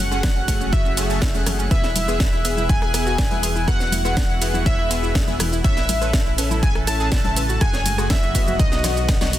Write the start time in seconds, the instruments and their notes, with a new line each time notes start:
Already playing: analog synth bass F#1, analog synth pad C#3 F#3 A3 F#4, digital synth lead F#5, synth texture F#6
0.11 supersaw synth A3 G#4 F#5, synth arpeggio sound C#4, high woodblock, shaker
0.23 kick, snare, ride, low conga, shaker
0.36 synth arpeggio sound C#4
0.48 supersaw synth A3 G#4 F#5, synth arpeggio sound C#4, kick, open hi-hat, ride, shaker
0.60 synth arpeggio sound C#4, high conga, shaker
0.73 synth arpeggio sound F#4, digital synth lead E5, kick, ride, shaker
0.85 synth arpeggio sound C#4, shaker
0.97 supersaw synth A3 G#4 F#5, synth arpeggio sound C#4, open hi-hat, ride, high woodblock, shaker
1.10 supersaw synth A3 G#4 A5, synth arpeggio sound C#4, shaker
1.22 synth arpeggio sound E4, kick, snare, ride, shaker
1.34 supersaw synth A3 G#4 F#5, synth arpeggio sound C#4, high conga, shaker
1.46 synth arpeggio sound C#4, cross-stick, open hi-hat, ride, low conga, shaker
1.59 synth arpeggio sound C#4, shaker
1.71 analog synth bass E1, analog synth pad B2 E3 E4 G#4, supersaw synth B3 G#4 E5, synth arpeggio sound B4, digital synth lead E5, kick, ride, shaker
1.83 synth arpeggio sound E4, snare, shaker
1.95 synth arpeggio sound E4, open hi-hat, ride, high conga, shaker
2.08 supersaw synth B3 G#4 E5, synth arpeggio sound G#4, high woodblock, shaker
2.19 synth arpeggio sound E4, kick, snare, ride, low conga, shaker
2.33 synth arpeggio sound E4
2.45 supersaw synth B3 G#4 E5, synth arpeggio sound G#4, open hi-hat, ride, shaker
2.57 synth arpeggio sound E4, high conga, shaker
2.69 synth arpeggio sound E4, digital synth lead G#5, kick, ride, shaker
2.82 synth arpeggio sound G#4, cross-stick
2.94 supersaw synth B3 G#4 E5, synth arpeggio sound E4, cross-stick, open hi-hat, ride, shaker
3.06 synth arpeggio sound F#4, shaker
3.18 synth arpeggio sound E4, kick, snare, ride, shaker
3.31 supersaw synth B3 G#4 E5, synth arpeggio sound E4, high conga
3.43 synth arpeggio sound G#4, open hi-hat, ride, high woodblock, shaker
3.56 synth arpeggio sound E4, shaker
3.68 supersaw synth B3 G#4 E5, synth arpeggio sound E4, analog synth pad F#4, digital synth lead F#5, kick, cross-stick, ride, shaker
3.80 synth arpeggio sound B4, snare, shaker
3.92 synth arpeggio sound E4, open hi-hat, ride, high conga, shaker
4.05 supersaw synth B3 G#4 E5, synth arpeggio sound E4, high woodblock, shaker
4.16 kick, snare, ride, low conga, shaker
4.29 synth arpeggio sound E4
4.41 supersaw synth B3 G#4 E5, synth arpeggio sound E4, open hi-hat, ride, shaker
4.53 synth arpeggio sound E4, high conga, shaker
4.66 synth arpeggio sound C#5, digital synth lead E5, kick, ride, shaker
4.79 synth arpeggio sound E4
4.90 supersaw synth B3 G#4 E5, synth arpeggio sound E4, open hi-hat, ride, high woodblock, shaker
5.03 synth arpeggio sound E4, shaker
5.15 synth arpeggio sound G#4, kick, snare, ride, shaker
5.27 supersaw synth B3 G#4 E5, synth arpeggio sound E4, high conga
5.40 synth arpeggio sound E4, cross-stick, open hi-hat, ride, low conga, shaker
5.52 synth arpeggio sound E4, shaker
5.64 analog synth bass A1, analog synth pad C#3 A3 A4, supersaw synth C#4 A4 E5, synth arpeggio sound C#5, digital synth lead E5, kick, ride, shaker
5.77 synth arpeggio sound E4, snare, shaker
5.89 synth arpeggio sound E4, open hi-hat, ride, high conga, shaker
6.01 supersaw synth C#4 A4 E5, synth arpeggio sound B4, high woodblock, shaker
6.13 synth arpeggio sound E4, kick, snare, ride, low conga, shaker
6.26 synth arpeggio sound E4
6.38 supersaw synth C#4 A4 E5, synth arpeggio sound B4, open hi-hat, ride, shaker
6.51 synth arpeggio sound E4, high conga, shaker
6.63 synth arpeggio sound E4, digital synth lead G#5, kick, ride, shaker
6.75 synth arpeggio sound A4, cross-stick
6.87 supersaw synth C#4 A4 E5, synth arpeggio sound E4, digital synth lead A5, cross-stick, open hi-hat, ride, shaker
7.00 synth arpeggio sound G#4, shaker
7.12 synth arpeggio sound E4, kick, snare, ride, shaker
7.24 supersaw synth C#4 A4 E5, synth arpeggio sound E4, high conga
7.36 synth arpeggio sound B4, open hi-hat, ride, high woodblock, shaker
7.49 synth arpeggio sound F#4, shaker
7.61 analog synth bass F#1, analog synth pad F#3 G#3 F#4, supersaw synth A3 G#4 F#5, synth arpeggio sound F#4, digital synth lead G#5, kick, cross-stick, ride, shaker
7.73 synth arpeggio sound C#5, snare, shaker
7.86 synth arpeggio sound F#4, open hi-hat, ride, high conga, shaker
7.98 supersaw synth A3 G#4 F#5, synth arpeggio sound F#4, cross-stick, high woodblock, shaker
8.10 digital synth lead E5, kick, snare, ride, low conga, shaker
8.23 synth arpeggio sound F#4, shaker
8.35 supersaw synth B3 F#4 D#5, synth arpeggio sound F#4, kick, open hi-hat, ride, shaker
8.47 synth arpeggio sound F#4, high conga, shaker
8.59 analog synth bass B1, analog synth pad B2 D#3 D#4, synth arpeggio sound D#5, digital synth lead D#5, kick, ride, shaker
8.72 synth arpeggio sound F#4, snare, shaker
8.84 supersaw synth B3 F#4 D#5, synth arpeggio sound F#4, snare, open hi-hat, ride, low conga, high woodblock, shaker
8.97 synth arpeggio sound F#4, shaker
9.09 synth arpeggio sound F#5, kick, snare, ride, shaker
9.21 supersaw synth B3 F#4 D#5, synth arpeggio sound F#4, snare, high conga, shaker
9.33 synth arpeggio sound F#4, open hi-hat, ride, low conga, shaker